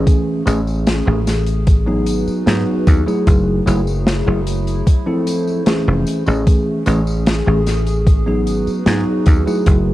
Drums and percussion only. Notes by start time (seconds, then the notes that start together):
0.07 kick, closed hi-hat, tambourine
0.47 closed hi-hat, tambourine
0.67 tambourine
0.86 snare, closed hi-hat, tambourine
1.27 snare, closed hi-hat, tambourine
1.46 closed hi-hat, tambourine
1.67 kick, closed hi-hat, tambourine
2.06 closed hi-hat, tambourine
2.27 tambourine
2.47 snare, closed hi-hat, tambourine
2.87 kick, closed hi-hat, tambourine
3.08 tambourine
3.27 kick, closed hi-hat, tambourine
3.67 closed hi-hat, tambourine
3.87 tambourine
4.07 snare, closed hi-hat, tambourine
4.47 closed hi-hat, tambourine
4.67 closed hi-hat, tambourine
4.87 kick, closed hi-hat, tambourine
5.27 closed hi-hat, tambourine
5.47 tambourine
5.66 snare, closed hi-hat, tambourine
6.07 closed hi-hat, tambourine
6.26 tambourine
6.47 kick, closed hi-hat, tambourine
6.86 closed hi-hat, tambourine
7.07 tambourine
7.26 snare, closed hi-hat, tambourine
7.67 snare, closed hi-hat, tambourine
7.87 closed hi-hat, tambourine
8.07 kick, closed hi-hat, tambourine
8.47 closed hi-hat, tambourine
8.67 tambourine
8.86 snare, closed hi-hat, tambourine
9.26 kick, closed hi-hat, tambourine
9.47 tambourine
9.66 kick, closed hi-hat, tambourine